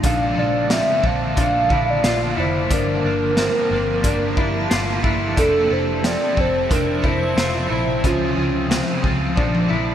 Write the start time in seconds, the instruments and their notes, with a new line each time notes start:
Already playing: ambient pad F3
0.03 picked electric bass A#1, overdriven electric guitar A#2 D3 F3 A#3 D4, ambient pad D3 A#3, clean electric guitar D4, soft synth lead F5, kick, closed hi-hat
0.07 overdriven electric guitar A4
0.35 picked electric bass A#1, overdriven electric guitar A#3 D4 A4, soft synth lead D5
0.41 overdriven electric guitar F3
0.69 overdriven electric guitar A#2 D3 F3 A#3 D4, clean electric guitar C4, soft synth lead E5, snare, closed hi-hat
0.74 overdriven electric guitar A4
1.02 picked electric bass A#1, overdriven electric guitar D4 A4, kick
1.06 overdriven electric guitar F3 A#3, soft synth lead F5
1.36 picked electric bass A#1, overdriven electric guitar F3 A#3, clean electric guitar D4, kick, closed hi-hat
1.40 overdriven electric guitar D4 A4
1.69 picked electric bass A#1, overdriven electric guitar D4 A4, clean electric guitar E4, kick
1.73 overdriven electric guitar F3 A#3
1.90 soft synth lead D5
2.03 picked electric bass A#1, overdriven electric guitar A#2 D3 F3 A#3 D4, clean electric guitar F4, snare, closed hi-hat
2.07 overdriven electric guitar A4
2.36 picked electric bass F1, overdriven electric guitar D4 A4, clean electric guitar E4, soft synth lead C5
2.40 overdriven electric guitar F3 A#3
2.69 picked electric bass G1, overdriven electric guitar G2 D3 F3 A#3 D4, ambient pad F3 G4, clean electric guitar D4, soft synth lead A#4, kick, closed hi-hat
3.04 picked electric bass G1, overdriven electric guitar A#3 D4
3.08 overdriven electric guitar F3
3.36 overdriven electric guitar G2 D3 F3 A#3 D4, clean electric guitar C4, snare, closed hi-hat
3.71 picked electric bass G1, overdriven electric guitar A#3 D4
3.75 overdriven electric guitar F3
4.03 picked electric bass G1, overdriven electric guitar F3 A#3, clean electric guitar D4, kick, closed hi-hat
4.07 overdriven electric guitar D4
4.37 picked electric bass G1, overdriven electric guitar A#3 D4, clean electric guitar E4, kick
4.42 overdriven electric guitar F3
4.70 picked electric bass G1, overdriven electric guitar G2 D3 F3 A#3 D4, clean electric guitar F4, snare, closed hi-hat
5.02 picked electric bass G1, overdriven electric guitar D4 A4, clean electric guitar E4, kick
5.07 overdriven electric guitar F3 A#3
5.36 picked electric bass F1, ambient pad C3 C4 E5, overdriven electric guitar F3 C4 E4 A4, clean electric guitar D4, soft synth lead A4, kick, closed hi-hat
5.70 picked electric bass F1, overdriven electric guitar E4 A4, soft synth lead C5
5.76 overdriven electric guitar C4
6.04 overdriven electric guitar F3 C4 E4, clean electric guitar C4, soft synth lead D5, snare, closed hi-hat
6.08 overdriven electric guitar A4
6.37 picked electric bass F1, overdriven electric guitar E4 A4, soft synth lead C5, kick
6.42 overdriven electric guitar C4
6.69 picked electric bass F1, overdriven electric guitar F3 C4, clean electric guitar D4, soft synth lead A#4, kick, closed hi-hat
6.73 overdriven electric guitar E4
7.02 picked electric bass F1, clean electric guitar E4, overdriven electric guitar E4 A4, kick
7.06 overdriven electric guitar C4, soft synth lead C5
7.36 picked electric bass F1, overdriven electric guitar F3 C4 E4, clean electric guitar F4, soft synth lead C5, snare, closed hi-hat
7.41 overdriven electric guitar A4
7.69 picked electric bass A#1, clean electric guitar E4, overdriven electric guitar E4 A4, soft synth lead C5
7.75 overdriven electric guitar C4
8.03 picked electric bass C#2, overdriven electric guitar C#3 F3 C4 F4, ambient pad F3, clean electric guitar C#4, soft synth lead F4, kick, closed hi-hat
8.08 overdriven electric guitar G#4
8.36 picked electric bass C#2, overdriven electric guitar F4 G#4
8.42 overdriven electric guitar C4
8.69 overdriven electric guitar C#3 F3 C4 F4, clean electric guitar C4, snare, closed hi-hat
8.73 overdriven electric guitar G#4
9.02 picked electric bass C#2, overdriven electric guitar F4 G#4, kick
9.08 overdriven electric guitar C4
9.35 picked electric bass A#1, overdriven electric guitar F3 A#3, clean electric guitar D4, kick, high tom
9.39 overdriven electric guitar D4 A4
9.55 high tom
9.68 picked electric bass A#1, overdriven electric guitar D4 A4, clean electric guitar E4
9.72 overdriven electric guitar F3 A#3